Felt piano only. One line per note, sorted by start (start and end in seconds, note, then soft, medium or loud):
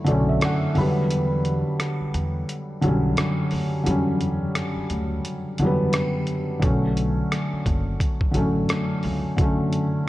0.00 0.05 D3 medium
0.00 0.07 F#3 medium
0.00 0.09 A3 medium
0.00 0.78 E4 medium
0.05 0.73 D3 medium
0.05 0.76 F#3 medium
0.05 0.27 D5 medium
0.09 0.77 A3 medium
0.09 0.78 C#4 medium
0.29 0.41 E5 medium
0.45 0.75 F#5 medium
0.75 1.87 D3 loud
0.75 1.88 F#3 medium
0.75 1.09 B5 medium
0.79 1.90 G3 medium
0.79 1.91 B3 loud
2.81 3.51 D3 loud
2.81 3.52 F#3 medium
2.85 3.53 G3 medium
2.85 3.54 C#4 medium
3.83 4.79 D3 medium
3.83 4.80 F#3 medium
3.88 4.81 G3 medium
3.88 4.82 C#4 loud
5.59 6.28 D3 medium
5.59 6.29 F#3 medium
5.64 6.30 G3 medium
5.64 6.31 B3 loud
6.59 7.55 D3 medium
6.59 7.56 F#3 medium
6.64 7.57 A3 medium
6.64 7.58 C#4 medium
8.31 9.02 D3 medium
8.31 9.03 F#3 medium
8.36 9.04 A3 medium
8.36 9.05 C#4 medium
9.37 10.09 D3 medium
9.37 10.09 F#3 medium
9.41 10.09 A3 medium
9.41 10.09 C#4 medium